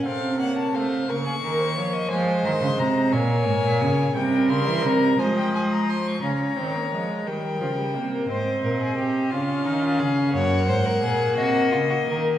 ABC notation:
X:1
M:6/8
L:1/16
Q:3/8=58
K:Bbm
V:1 name="Violin"
f2 g =a f2 d'6 | a2 c'2 b2 a6 | =g2 c'2 b2 a g a b c' d' | b6 =g6 |
e6 f6 | [K:Ebdor] g6 e6 |]
V:2 name="Violin"
=A2 d2 c2 B _A B c d e | c6 d6 | B6 c6 | d6 B6 |
c2 B A =G2 F2 E F A2 | [K:Ebdor] d2 c B A2 G2 F G B2 |]
V:3 name="Viola"
C2 B,2 =A,2 B,6 | A,6 B,6 | =G,6 F,6 | D2 C B, A,2 =G,2 F, G, B,2 |
C6 D6 | [K:Ebdor] B,12 |]
V:4 name="Cello" clef=bass
C,6 D,2 E,2 F,2 | F,2 E, D, C,2 B,,2 A,, B,, D,2 | C,2 D, =E, C,2 A,6 | D,2 E,2 F,2 E,2 D,2 C,2 |
A,,2 B,,2 C,2 D,2 E,2 D,2 | [K:Ebdor] G,,2 A,,2 B,,2 C,2 D,2 E,2 |]